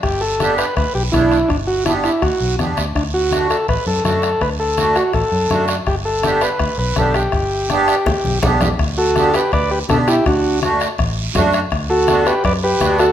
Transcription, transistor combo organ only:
X:1
M:4/4
L:1/8
Q:1/4=164
K:Glyd
V:1 name="Transistor combo organ"
G A2 B B G E2 | D F E E F2 z2 | D F2 A B A A2 | B A2 F A3 z |
G A2 B2 B A G- | G6 z2 | z [FA]2 [GB] [Bd] [GB] [DA] [EG] | [DF]2 z6 |
z [FA]2 [GB] [Bd] [GB]2 [FA] |]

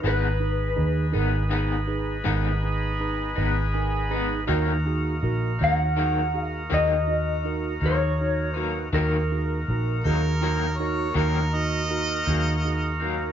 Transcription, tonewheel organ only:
X:1
M:12/8
L:1/8
Q:3/8=54
K:Ebm
V:1 name="Tonewheel organ"
[CEAc]12 | [B,EGB]12 | [B,EGB]12 |]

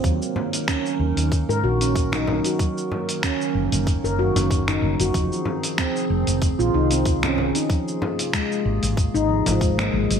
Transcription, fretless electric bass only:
X:1
M:4/4
L:1/16
Q:"Swing 16ths" 1/4=94
K:Abmix
V:1 name="Fretless electric bass" clef=bass
E,, z4 z E,, E,,2 A,, B,,,4- B,,, z | z6 G,,, G,,,2 G,,,2 G,,,3 G,,, G,,, | F,,, z4 z F,,, F,,,2 B,,, C,,4- C,, z | z6 A,,, A,,,2 A,,,2 A,,,3 A,,, A,,, |]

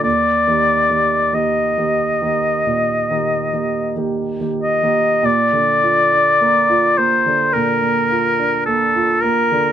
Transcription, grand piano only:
X:1
M:4/4
L:1/16
Q:1/4=51
K:Eb
V:1 name="Grand piano"
(3E,,2 [E,B,G]2 [E,B,G]2 (3[E,B,G]2 [E,B,G]2 [E,B,G]2 (3B,,2 [E,B,G]2 [E,B,G]2 (3[E,B,G]2 [E,B,G]2 [E,B,G]2 | [K:Bb] B,, D, F D B, F B, D, B,, B, F D B, F B, D, |]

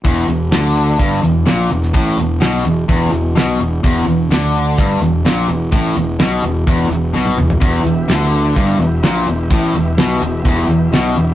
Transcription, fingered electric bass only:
X:1
M:4/4
L:1/8
Q:1/4=127
K:Em
V:1 name="Fingered electric bass" clef=bass
E,,, E,,, D,,2 G,,, E,,, ^A,,, E,,, | A,,, E,,, B,,, E,,, E,,, E,,, B,,, E,,, | E,,, E,,, D,,2 G,,, E,,, ^A,,, E,,, | A,,, E,,, B,,, E,,, E,,, E,,, B,,, E,,, |
E,,, E,,, D,,2 G,,, E,,, ^A,,, E,,, | A,,, E,,, B,,, E,,, E,,, E,,, B,,, E,,, |]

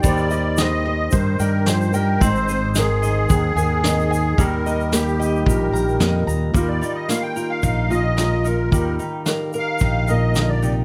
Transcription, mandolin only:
X:1
M:4/4
L:1/8
Q:1/4=110
K:Eb
V:1 name="Mandolin"
[G,g] e2 e2 g2 g | C e A e A a e a | G, e G e G b e b | G, E f B E f B E |
G, E f B E f B E |]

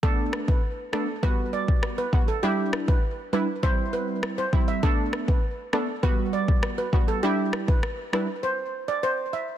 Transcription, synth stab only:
X:1
M:4/4
L:1/16
Q:1/4=100
K:Bphr
V:1 name="Synth stab"
[A,B,D]4 z2 [A,B,D] z [G,B,F]6 [G,B,F] z | [G,DE]4 z2 [G,DE] z [G,CE]6 [G,CE]2 | [A,B,D]4 z2 [A,B,D] z [G,B,F]6 [G,B,F]2 | [G,DE]4 z2 [G,DE] z8 z |]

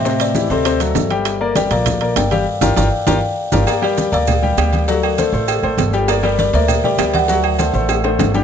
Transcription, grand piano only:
X:1
M:4/4
L:1/8
Q:1/4=199
K:Gm
V:1 name="Grand piano"
[C,Cc]2 [=E,=EG] [C,Cc] [C,Cc] [^F,^FA]2 [G,Gg]- | [G,Gg] [B,Bd] [G,Gg] [B,Bd]2 [B,Bd]2 [G,Gg] | z [FGB] [FGB] z [FGB] z2 [FGB] | [B,Bd] [G,Gg]2 [B,Bd]2 [G,Gg] [G,Gg]2 |
[^F,^F^f]2 [A,Ac] [A,Ac]2 [A,Ac]2 [G,Gg] | [B,Bd] [G,Gg]2 [B,Bd]2 [G,Gg] [G,Gg]2 | [^F,^F^f]2 [A,Ac] [A,Ac]2 [A,Ac]2 [G,Gg] |]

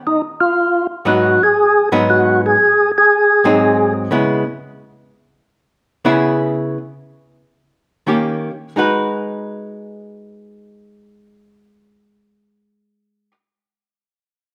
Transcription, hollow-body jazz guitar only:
X:1
M:4/4
L:1/8
Q:"Swing" 1/4=106
K:G#dor
V:1 name="Hollow-body jazz guitar"
z4 [G,,F,B,D] z2 [G,,F,B,D]- | [G,,F,B,D]2 z3 [G,,F,^B,D]3 | [K:G#m] [C,G,B,E] z6 [C,B,EG]- | [C,B,EG]2 z4 [D,A,C=G] z |
[G,DFB]8- | [G,DFB]8 |]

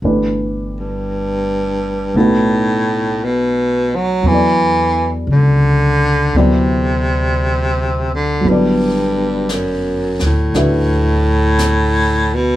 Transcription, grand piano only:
X:1
M:4/4
L:1/8
Q:"Swing" 1/4=57
K:G
V:1 name="Grand piano"
[E,A,DGB]4 [A,B,^DFB]4 | [F,B,EAd]4 [F,B,EAd]4 | [F,B,EAd]4 [DFBe]4 |]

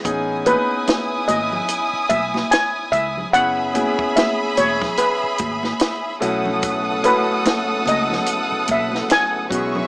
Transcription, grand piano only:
X:1
M:4/4
L:1/8
Q:"Swing 16ths" 1/4=73
K:Bmix
V:1 name="Grand piano"
[B,CDG] [B,CDB]3 z4 | [B,CEG] [B,CEG]3 z3 [A,CEF]- | [A,CEF] [A,CEF]3 z3 [F,G,B,CF] |]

